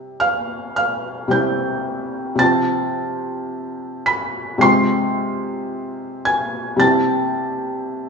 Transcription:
felt piano
Already playing: C3 G3 C4 E4 G5 G6
0.20 F5 F6
0.76 F5 F6
1.28 C3 G3 C4 G6
1.32 E4 G5
2.35 C3 F3 C4 A6
2.40 F4 A5
4.06 B5 B6
4.58 C3 G#3 C4 C7
4.62 F4 C6
6.25 G#5 G#6
6.76 C3 G3 C4 A6
6.81 E4 A5

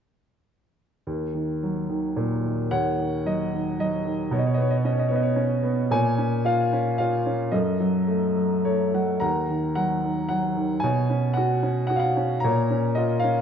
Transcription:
upright piano
1.07 D#2
1.34 D#3
1.63 F#3
1.90 D#3
2.16 A#2
2.44 D#3
2.71 D#2 C#5 F#5
2.99 D#3
3.25 F#3 D#5
3.54 D#3
3.79 F#3 D#5
4.05 D#3
4.31 B2 C#5
4.39 D#5
4.47 C#5
4.54 B3 D#5
4.62 C#5
4.71 D#5
4.77 C#5
4.84 C#4 D#5
4.92 C#5
4.99 D#5
5.08 B3 C#5
5.16 D#5
5.23 C#5
5.36 C#4
5.63 B3
5.91 A#2 C#5 G#5
6.18 C#4
6.45 F4 F5
6.73 C#4
6.98 F4 F5
7.26 C#4
7.52 F#2 A4 D#5
7.80 F#3
8.07 A3
8.36 F#3
8.65 A3 C#5
8.94 F#3 F#5
9.20 D#2 F#5 A#5
9.49 D#3
9.75 F#3 F#5
10.04 D#3
10.29 F#3 F#5
10.57 D#3
10.80 B2 C#5 G#5
11.10 C#4
11.34 F#4 F#5
11.63 C#4
11.87 F#4 F#5
11.96 F5 F#5
12.17 C#4
12.40 A#5
12.44 A#2 C#5
12.71 C#4
12.95 F4 D#5
13.20 F5
13.24 C#4

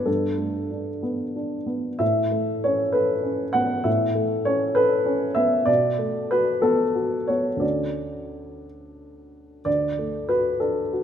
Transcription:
upright piano
Already playing: B3
0.06 G2 A4
0.38 A3
0.71 D4
1.03 B3
1.36 D4
1.66 B3
1.99 A2 E5
2.31 A3
2.64 C#4 C#5
2.92 A4 B4
3.23 C#4
3.53 B3 F#5
3.84 A2 E5
4.15 A3
4.45 C#4 C#5
4.75 A4 B4
5.06 C#4
5.35 B3 E5
5.65 B2 D5
5.99 A3
6.31 F#4 B4
6.62 B3 A4
6.95 F#4
7.27 B3 C#5
7.57 D2 A3 C#4 F#4 D5
9.65 D2 D5
9.99 A3
10.29 F#4 B4
10.60 D4 A4
10.93 F#4

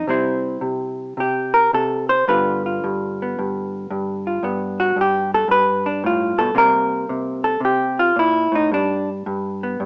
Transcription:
hollow-body jazz guitar
0.07 C3 G3 C4 E4 C5
0.61 C3
1.17 C3 G4
1.54 A#4
1.73 C3 A4
2.09 C5
2.28 G2 D3 B3 F4 B4
2.66 F4
2.84 G2
3.22 B3
3.39 G2
3.91 G2
4.27 F4
4.43 G2 B3
4.80 F#4
4.96 G2
5.01 G4
5.34 A4
5.48 G2 B4
5.86 D4
6.04 A2 F4
6.38 B2 A4
6.55 C3 G3 A#3 A#4
7.09 C3
7.44 A4
7.60 C3
7.65 G4
7.99 F4
8.16 A#2 E4
8.52 A2 D#4
8.71 G2 D4
9.26 G2
9.63 B3
9.80 G2

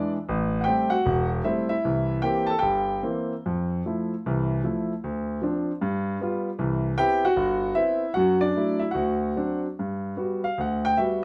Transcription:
grand piano
Already playing: E3 G#3 D4 D5
0.29 A1
0.61 G4 F#5 G5
0.67 G3 A3 C4
0.90 F#4 F#5
1.06 E1
1.44 G3 A3 C4 E4 E5
1.69 E4 E5
1.85 C2 E3
2.22 E3 A#3 C4 G4 G5
2.47 A4 A5
2.59 G1 G4 G5
3.03 E3 A#3 C4
3.46 F2
3.86 F3 A3 E4
4.26 C2 E3
4.64 F3 A3 E4
5.04 D2
5.42 F3 C4 D4
5.81 G2
6.21 G3 B3 F4
6.59 C2 E3
6.98 B3 C4 E4 G4 G5
7.25 F#4 F#5
7.36 G1
7.75 B3 C4 E4 E5
8.14 F#2 F#3 F#4 F#5
8.41 D4 D5
8.55 F#3 A3 E4
8.79 E4 E5
8.91 D2 F#4 F#5
9.36 F#3 C4 D4
9.79 G2
10.17 G3 B3 F#4
10.44 F5
10.58 D2 F#5
10.85 G5
10.97 G3 B3 F#4 E5

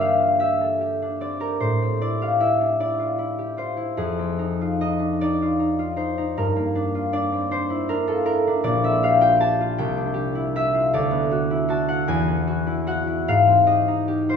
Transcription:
harp
Already playing: G2 A#3 D4 A#4 E5
0.01 G4 F5
0.19 F4
0.39 G4 E5
0.61 A4
0.81 G4
1.02 D4
1.21 C4 D5
1.40 G4 A#4
1.60 A2 C5
1.82 C4
2.01 E4 D5
2.22 G4 F5
2.40 E4 E5
2.61 D4
2.80 E4 D5
2.99 F4
3.18 E4
3.38 G4
3.57 F4 C5
3.77 E4
3.97 F2 G#4
4.19 C4
4.39 D#4
4.61 F4
4.81 D#4 D#5
4.99 D4
5.21 D#4 D5
5.42 F4
5.59 D#4
5.79 F4
5.96 D#4 C5
6.18 D#4
6.37 G2 A#4
6.56 A#3
6.75 D4
6.95 F4
7.13 D4 D5
7.32 C4
7.51 D4 C5
7.70 E4
7.89 D4 A#4
8.07 F4 A4
8.25 E4 A#4
8.47 D4
8.63 A#1 D5
8.84 C4 E5
9.03 G4 F5
9.21 F4 G5
9.40 G4 A5
9.60 F4
9.78 C2 G5
9.97 D4
10.14 G4
10.35 E4
10.56 G4 E5
10.74 F4
10.93 D2 D5
11.11 B3
11.31 F#4
11.51 E4
11.68 F#4 A5
11.88 E4 F#5
12.08 E2 G#5
12.28 B3
12.47 F#4
12.67 E4
12.87 F#4 F#5
13.07 E4
13.28 G#2 F5
13.47 C4
13.67 G4 D#5
13.88 D#4
14.08 G4
14.29 F4 C5

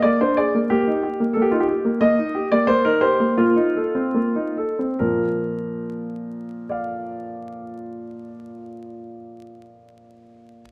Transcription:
grand piano
0.02 A#3 D5
0.21 D4 C5
0.37 G#4 D5
0.55 A#3
0.70 A#3 G4
0.87 D#4
1.03 G4
1.20 A#3
1.33 A#3 A4
1.42 G4
1.51 D#4 F4
1.60 G4
1.68 G4
1.85 A#3
2.01 A#3 D#5
2.19 D#4
2.35 G4
2.51 A#3 D5
2.67 A#3 C5
2.84 D#4 A#4
3.01 G4 C5
3.20 A#3
3.37 A#3 F4
3.56 D#4
3.76 A4
3.95 C4
4.14 A#3
4.36 D#4
4.57 A4
4.79 C4
4.99 A#2 F3 A#4
6.69 D5 F5

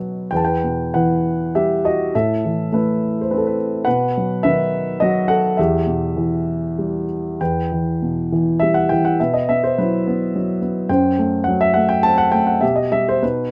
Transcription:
grand piano
Already playing: B2 F#3 B3 D#4 B4
0.31 E2 B4 G5
0.36 A5
0.45 B4 G5
0.64 B2
0.94 E3 B4 F#5
1.55 G3 G4 E5
1.85 F#4 D#5
2.14 A2 A4 E5
2.45 E3
2.72 A3 E4 B4
3.21 C5
3.31 C4 B4
3.37 A4
3.46 B4
3.85 B2 B4 F#5
4.17 F#3
4.43 D#3 B4 E5
5.00 F#3 F#4 D#5
5.28 A4 F#5
5.57 E2 G4 E5
5.87 B2
6.16 E3
6.79 G3
7.40 E2 B4 G5
7.72 E3
8.02 B2
8.32 E3
8.60 G3 E5
8.74 F#5
8.89 E3 G5
9.05 F#5
9.20 B2 B4 E5
9.34 D#5
9.49 B3 E5
9.64 C5
9.78 F#3 E4 B4
10.07 B3
10.36 F#3
10.62 B3
10.89 F#2 C5 G5
11.19 A3
11.44 F#5
11.48 F#3
11.61 E5
11.74 A3 F#5
11.89 G5
12.03 C4 A5
12.18 F#5
12.32 A3 G5
12.47 F#5
12.61 B2 G4 E5
12.76 D#5
12.92 G3 E5
13.09 C5
13.22 B2 D#4 B4

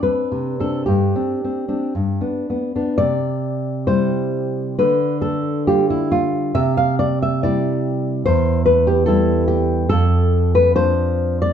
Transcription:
nylon-string guitar
0.03 C4 D4 B4
0.32 C3
0.60 C4 D4 A4
0.86 G2 G4
1.16 C4 D4
1.44 C4
1.68 C4 D4
1.95 G2
2.21 B3 D4
2.50 B3
2.76 B3 D4
2.98 C3 D5
3.87 G3 E4 C5
4.79 D3 B4
5.22 A4
5.67 G3 F4 G4
5.90 E4
6.12 F4
6.55 C3 E5
6.77 F5
6.99 D5
7.22 E5
7.43 G3 E4 D5
8.26 E2 C5
8.66 B4
8.87 G4
9.06 G3 E4 A4
9.48 G4
9.89 F2 A4
10.55 B4
10.76 F3 D4 C5
11.42 D5

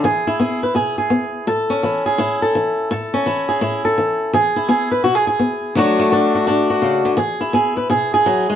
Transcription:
steel-string acoustic guitar
Already playing: E4
0.04 E3 G#4
0.27 E4
0.40 B3 G#4
0.63 B4
0.75 B2 G#4
0.98 G#4
1.10 B3
1.47 A2 A4
1.70 C#4
1.83 E3 E4
2.06 G#4
2.18 A2 E4
2.42 A4
2.55 E3
2.91 A2 A4
3.14 C#4
3.26 E3 E4
3.49 G#4
3.61 A2 E4
3.85 A4
3.98 E3
4.33 E3 G#4
4.56 E4
4.69 B3 G#4
4.91 B4
5.04 B2 F#4
5.15 G#4
5.27 G#4
5.39 B3
5.75 D3 F#3 A3 D4 F#4
5.99 A3
6.12 F#3 D4
6.35 F#4
6.47 A2 D4
6.70 F#4
6.82 C#3
7.05 D3
7.17 E3 G#4
7.41 E4
7.53 B3 G#4
7.77 B4
7.90 B2 G#4
8.14 G#4
8.26 F#3
8.50 G#3

